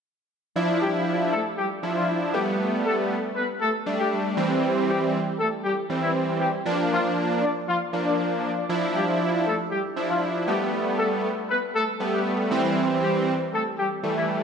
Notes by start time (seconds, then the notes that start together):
0.56 F3 D4 E4
0.81 G3 G4
1.32 A3 A4
1.58 G3 G4
1.83 F3 D4 E4
1.96 F3 F4
2.34 G3 A3 B3 G4
2.85 A3 A4
3.35 B3 B4
3.61 A3 A4
3.86 G3 A3 D4
3.99 G3 G4
4.37 E3 G3 C4
4.88 G3 G4
5.39 A3 A4
5.64 G3 G4
5.90 E3 G3 C4
6.03 E3 E4
6.40 G3 G4
6.66 F3 A#3 D4
6.91 F3 F4
7.42 D4 D5
7.68 F3 F4
7.93 F3 A#3 D4
8.06 D4 D5
8.69 F3 D4 E4
8.95 G3 G4
9.46 A3 A4
9.71 G3 G4
9.96 F3 D4 E4
10.09 F3 F4
10.47 G3 A3 B3 G4
10.98 A3 A4
11.49 B3 B4
11.75 A3 A4
12.00 G3 A3 B3
12.13 G3 G4
12.51 E3 G3 C4
13.02 G3 G4
13.53 A3 A4
13.78 G3 G4
14.03 E3 G3 A3
14.16 E3 E4